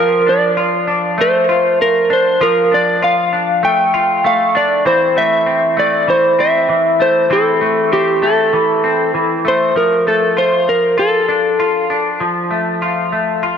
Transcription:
Already playing: clean electric guitar F3 A#3 F4
0.00 electric slide guitar A#4
0.26 clean electric guitar D4, electric slide guitar D5
0.57 clean electric guitar F4
0.87 clean electric guitar D4
1.18 clean electric guitar A3, electric slide guitar C5
1.49 clean electric guitar F4
1.82 electric slide guitar A#4
2.10 clean electric guitar D4, electric slide guitar C5
2.41 clean electric guitar F3 F4, electric slide guitar A#4
2.72 clean electric guitar D4, electric slide guitar D5
3.02 clean electric guitar F4, electric slide guitar F5
3.33 clean electric guitar D4
3.63 clean electric guitar A3, electric slide guitar G5
3.94 clean electric guitar F4
4.24 clean electric guitar A3, electric slide guitar F5
4.55 clean electric guitar D4, electric slide guitar D5
4.85 clean electric guitar E3 C4, electric slide guitar C5
5.16 clean electric guitar A3, electric slide guitar E5
5.46 clean electric guitar C4
5.77 clean electric guitar A3, electric slide guitar D5
6.08 clean electric guitar E3, electric slide guitar C5
6.39 clean electric guitar C4, electric slide guitar E5
6.69 clean electric guitar E3
7.00 clean electric guitar A3, electric slide guitar C5
7.30 clean electric guitar E3 C4, electric slide guitar A4
7.61 clean electric guitar A3
7.92 clean electric guitar C4, electric slide guitar G4
8.22 clean electric guitar A3, electric slide guitar A4
8.53 clean electric guitar E3
8.84 clean electric guitar C4
9.14 clean electric guitar E3
9.45 clean electric guitar A3, electric slide guitar C5
9.76 clean electric guitar F3, electric slide guitar A#4
10.07 clean electric guitar A3, electric slide guitar A4
10.37 clean electric guitar F4, electric slide guitar C5
10.69 electric slide guitar A#4
10.98 clean electric guitar F4, electric slide guitar A4
11.29 clean electric guitar D4
11.60 clean electric guitar F4
11.90 clean electric guitar D4
12.20 clean electric guitar F3
12.51 clean electric guitar A3
12.82 clean electric guitar F4
13.12 clean electric guitar A3
13.43 clean electric guitar F4

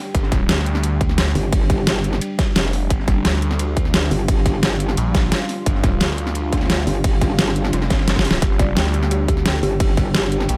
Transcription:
Already playing: ambient pad G3 D4 G4
0.14 detuned saw bass G1, kick, closed hi-hat, ride
0.23 snare
0.32 kick, snare, closed hi-hat, ride
0.49 detuned saw bass D2, snare, closed hi-hat, ride
0.57 snare
0.66 closed hi-hat, ride
0.75 snare, ride
0.83 closed hi-hat, ride
1.01 kick, closed hi-hat, ride
1.09 snare
1.18 snare, closed hi-hat, ride
1.27 snare
1.35 wobble bass G1, snare, open hi-hat, ride
1.52 kick, closed hi-hat, open hi-hat
1.61 snare
1.70 kick, snare, closed hi-hat, ride
1.78 ride
1.87 snare, closed hi-hat, ride
1.96 snare
2.04 closed hi-hat, ride
2.13 snare
2.21 closed hi-hat, ride
2.39 kick, snare, closed hi-hat, ride
2.55 detuned saw bass F1, snare, closed hi-hat, ride
2.65 snare
2.73 snare, open hi-hat, ride
2.90 detuned saw bass G1, ambient pad F4, kick, closed hi-hat, ride
3.00 snare
3.08 kick, snare, closed hi-hat, ride
3.25 detuned saw bass D2, snare, closed hi-hat, ride
3.34 snare
3.42 closed hi-hat, ride
3.50 snare, ride
3.59 closed hi-hat, ride
3.77 kick, closed hi-hat, ride
3.85 snare
3.94 snare, closed hi-hat, ride
4.02 snare
4.11 wobble bass G1, snare, open hi-hat, ride
4.28 kick, closed hi-hat, open hi-hat
4.37 snare
4.46 kick, snare, closed hi-hat, ride
4.54 ride
4.63 snare, closed hi-hat, ride
4.72 snare
4.80 closed hi-hat, ride
4.89 snare
4.97 detuned saw bass A#1, closed hi-hat, ride
5.14 kick, snare, closed hi-hat, ride
5.32 snare, closed hi-hat, ride
5.41 snare
5.48 snare, open hi-hat, ride
5.66 detuned saw bass G1, kick, closed hi-hat, ride
5.75 snare
5.83 kick, snare, closed hi-hat, ride
6.00 detuned saw bass D2, snare, closed hi-hat, ride
6.09 snare
6.18 closed hi-hat, ride
6.27 snare, ride
6.35 closed hi-hat, ride
6.52 kick, snare, closed hi-hat, ride
6.57 snare, ride
6.61 snare, ride
6.65 snare, ride
6.70 snare, closed hi-hat, ride
6.79 snare
6.87 wobble bass G1, snare, open hi-hat, ride
7.04 kick, closed hi-hat, open hi-hat
7.13 snare
7.21 kick, snare, closed hi-hat, ride
7.29 snare
7.38 snare, closed hi-hat, ride
7.47 snare, ride
7.56 snare, closed hi-hat
7.64 snare, ride
7.73 detuned saw bass F1, snare, closed hi-hat, ride
7.82 snare, ride
7.90 detuned saw bass G1, kick, snare, closed hi-hat, ride
7.99 snare, ride
8.07 snare, closed hi-hat, ride
8.16 kick, snare, ride
8.19 snare
8.25 snare, open hi-hat, ride
8.31 snare
8.34 snare
8.42 detuned saw bass G1, ambient pad G4, synth bell G4, kick, closed hi-hat, ride
8.51 snare
8.59 synth bell D5, kick, snare, closed hi-hat, ride
8.76 detuned saw bass D2, synth bell G5, snare, closed hi-hat, ride
8.85 snare
8.94 synth bell G4, closed hi-hat, ride
9.03 snare, ride
9.11 synth bell G4, closed hi-hat, ride
9.28 synth bell G4, kick, closed hi-hat, ride
9.37 snare
9.46 synth bell G5, snare, closed hi-hat, ride
9.54 snare
9.63 wobble bass G1, synth bell G4, snare, open hi-hat, ride
9.80 synth bell G4, kick, closed hi-hat, open hi-hat
9.89 snare
9.97 synth bell G4, kick, snare, closed hi-hat, ride
10.06 ride
10.14 synth bell G4, snare, closed hi-hat, ride
10.23 snare
10.32 synth bell G4, closed hi-hat, ride
10.40 snare
10.48 detuned saw bass A#1, synth bell G5, closed hi-hat, ride

